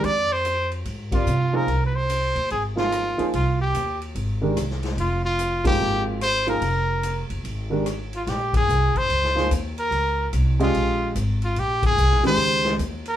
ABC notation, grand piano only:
X:1
M:4/4
L:1/8
Q:"Swing" 1/4=146
K:Fdor
V:1 name="Grand piano"
z4 z [G,CFBd] z [F,B,EAc] | z4 z [F,B,EAc]2 [F,B,EAc] | z4 z [E,A,DGB] z2 | z3 [F,A,B,Ec]3 z [F,B,EAB] |
z4 z [E,A,DGB] z2 | [K:Bbdor] z4 z [F,B,EAc] z2 | z3 [A,DGce]3 z2 | z3 [E,A,DGB]3 z2 |]